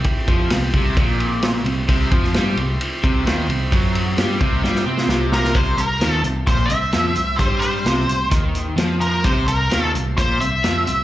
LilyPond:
<<
  \new Staff \with { instrumentName = "Lead electric guitar" } { \time 4/4 \key c \mixolydian \tempo 4 = 130 r1 | r1 | r2. r8 bes'8 | c''8 bes'4 r8 c''8 e''4. |
c''8 c''4. r4. bes'8 | c''8 bes'4 r8 c''8 e''4. | }
  \new Staff \with { instrumentName = "Tonewheel organ" } { \time 4/4 \key c \mixolydian <c' e' g'>1 | <c' e' c'' g''>1~ | <c' e' c'' g''>1 | \tuplet 3/2 { <des' f' aes' des''>8 <c' g' c'' e''>4~ } <c' g' c'' e''>2.~ |
<c' g' c'' e''>1 | <c' g' c'' e''>1 | }
  \new Staff \with { instrumentName = "Overdriven electric guitar" } { \clef bass \time 4/4 \key c \mixolydian r8 f8 c8 c8 bes,4. c8 | c8 f8 g8 c8 r8 c8 ees8 c8 | fis4 g8 c8 g8 c'8 c4 | c8 c8 ees8 c8 bes,8 c8 f8 c8 |
g4 c8 c8 ees4 f4 | c8 c8 ees8 c8 bes,8 c8 f8 c8 | }
  \new Staff \with { instrumentName = "Picked electric bass" } { \clef bass \time 4/4 \key c \mixolydian r8 f,8 c,8 c,8 bes,,4. c,8 | c,8 f,8 g,8 c,8 r8 c,8 ees,8 c,8 | fis,4 g,8 c,8 g,8 c8 c,4 | c,8 c,8 ees,8 c,8 bes,,8 c,8 f,8 c,8 |
g,4 c,8 c,8 ees,4 f,4 | c,8 c,8 ees,8 c,8 bes,,8 c,8 f,8 c,8 | }
  \new DrumStaff \with { instrumentName = "Drums" } \drummode { \time 4/4 <bd cymr>8 <bd cymr>8 <cymr sn>8 <bd cymr>8 <bd cymr>8 cymr8 <cymr sn>8 cymr8 | <bd cymr>8 <bd cymr>16 sn16 <cymr sn>8 cymr8 cymr8 <bd cymr>8 <cymr sn>8 cymr8 | <bd cymr>8 cymr8 <cymr sn>8 <bd cymr>8 sn16 sn8 sn16 sn8 sn16 sn16 | <hh bd>8 hh8 <hh sn>8 hh8 <hh bd>8 hh8 <hh sn>8 hh8 |
<hh bd>8 hh8 <hh sn>8 hh8 <hh bd>8 hh8 <hh sn>8 hh8 | <hh bd>8 hh8 <hh sn>8 hh8 <hh bd>8 hh8 <hh sn>8 hh8 | }
>>